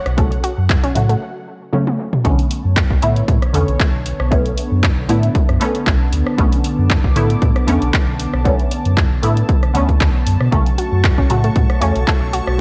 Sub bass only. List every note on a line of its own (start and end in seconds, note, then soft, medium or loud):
0.06 0.39 B1 loud
0.58 0.77 F#2 loud
0.84 0.93 B1 loud
0.96 1.16 A2 medium
2.25 2.35 B1 loud
2.65 2.84 F#2 loud
2.90 3.00 B1 loud
3.02 3.23 A2 medium
3.28 3.39 A2 loud
3.54 3.65 E2 loud
3.68 3.77 B1 loud
3.94 4.13 B1 medium
4.20 4.53 B1 loud
4.71 4.91 F#2 loud
4.97 5.06 B1 loud
5.09 5.29 A2 medium
5.49 5.58 F#2 medium
5.87 5.97 B1 loud
6.13 6.23 D2 medium
6.39 6.49 B1 loud
6.78 6.98 F#2 loud
7.04 7.13 B1 loud
7.16 7.36 A2 medium
7.42 7.53 A2 loud
7.68 7.78 E2 loud
7.82 7.91 B1 loud
8.08 8.27 B1 medium
8.34 8.67 B1 loud
8.85 9.05 F#2 loud
9.11 9.20 B1 loud
9.23 9.43 A2 medium
9.75 10.09 D2 loud
10.27 10.37 F#2 loud
10.40 10.50 B2 loud
10.52 10.63 B1 loud
10.92 11.11 F#2 loud
11.18 11.27 B1 loud
11.30 11.50 A2 medium
11.56 11.66 A2 loud
11.82 11.92 E2 loud
11.96 12.05 B1 loud
12.22 12.41 B1 medium
12.47 12.61 B1 medium